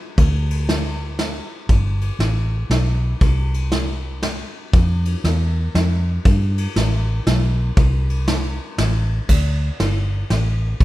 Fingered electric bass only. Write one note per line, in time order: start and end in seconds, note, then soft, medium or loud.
0.18 1.39 D2 medium
1.69 2.10 G1 medium
2.19 2.63 A1 medium
2.70 3.13 B1 medium
3.21 4.43 C2 medium
4.74 5.14 F2 medium
5.24 5.67 E2 medium
5.75 6.18 F2 medium
6.26 6.66 G2 loud
6.76 7.19 A1 medium
7.27 7.70 B1 medium
7.77 8.58 C2 loud
8.78 9.19 A1 medium
9.29 9.69 D2 medium
9.80 10.23 G1 medium
10.30 10.73 A1 medium
10.81 10.84 B1 medium